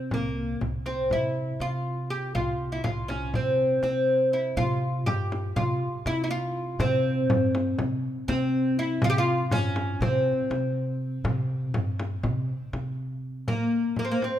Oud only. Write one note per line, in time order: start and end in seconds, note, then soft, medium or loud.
0.00 0.13 C4 medium
0.14 0.58 A#3 medium
0.86 1.11 C4 medium
1.13 1.61 E4 medium
1.61 2.10 F4 medium
2.10 2.34 G4 medium
2.35 2.72 F4 medium
2.72 2.83 E4 medium
2.84 3.07 F4 medium
3.08 3.34 C#4 medium
3.35 3.82 C4 medium
3.83 4.34 C4 medium
4.33 4.57 E4 medium
4.57 5.06 F4 medium
5.06 5.56 G4 medium
5.56 6.06 F4 medium
6.07 6.22 E4 medium
6.24 6.30 E4 medium
6.31 6.81 F4 medium
6.80 7.75 C4 medium
8.28 8.79 C4 medium
8.79 9.04 E4 medium
9.04 9.09 F4 loud
9.10 9.17 G4 loud
9.18 9.54 F4 medium
9.52 10.01 C#4 loud
10.02 12.94 C4 medium
13.48 13.98 A#3 medium
13.99 14.05 A#3 medium
14.05 14.10 C4 medium
14.11 14.23 A#3 medium
14.24 14.39 C4 medium